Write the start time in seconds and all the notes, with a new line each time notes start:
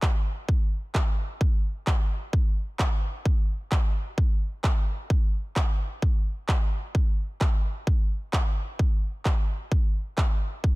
0.02 kick, clap
0.49 kick
0.95 kick, clap
1.41 kick
1.87 kick, clap
2.33 kick
2.79 kick, clap
3.26 kick
3.72 kick, clap
4.18 kick
4.64 kick, clap
5.10 kick
5.56 kick, clap
6.02 kick
6.49 kick, clap
6.95 kick
7.41 kick, clap
7.87 kick
8.33 kick, clap
8.79 kick
9.25 kick, clap
9.72 kick
10.18 kick, clap
10.64 kick